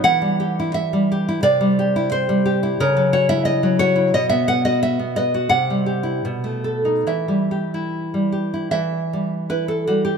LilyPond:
\new Staff \with { instrumentName = "Nylon-string guitar" } { \time 2/4 \key e \minor \tempo 4 = 85 << { fis''4 e''4 | d''4 c''4 | ais'8 cis''16 e''16 dis''8 cis''8 | dis''16 e''16 fis''16 dis''16 e''8 dis''8 |
fis''2 | e''4. r8 | e''4 b'16 a'16 fis'16 g'16 | } \\ { e16 g16 g'16 e'8 g16 g'16 e'16 | c16 g16 g'16 e'8 g16 g'16 e'16 | cis16 fis16 fis'16 e'8 fis16 fis'16 e'16 | b,16 b16 b'16 fis'8 b16 b'16 fis'16 |
c16 g16 g'16 e'16 b,16 a16 a'16 dis'16 | e16 g16 g'16 e'8 g16 g'16 e'16 | e8 g8 e'8 g8 | } >> }